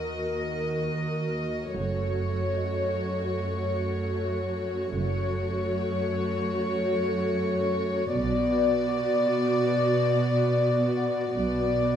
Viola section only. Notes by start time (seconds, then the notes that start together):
Already playing: F#4 A#4
1.76 A3 F#4
4.96 A3 F#4
8.16 B3 F#4
11.36 B3 F#4